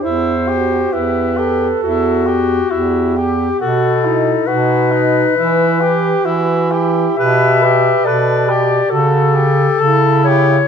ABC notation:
X:1
M:4/4
L:1/8
Q:1/4=68
K:Em
V:1 name="Clarinet"
c2 B2 F3 G | A2 B4- B z | [K:Amix] e2 d2 A3 c |]
V:2 name="Tenor saxophone"
E G E G E G E G | F ^D F D E G E G | [K:Amix] B G B G A G A G |]
V:3 name="Alto saxophone"
E F G A2 z G2 | F E ^D2 E G F E | [K:Amix] G B A G F z E2 |]
V:4 name="Bass clarinet" clef=bass
E,,2 E,,2 E,,2 E,,2 | B,,2 B,,2 E,2 E,2 | [K:Amix] B,,2 B,,2 C,2 C,2 |]